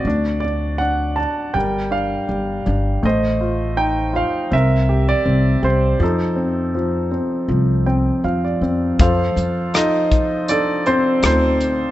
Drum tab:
HH |--------|--------|--------|xxxxxxxx|
SD |--------|--------|--------|--r---r-|
BD |--------|--------|--------|o--o----|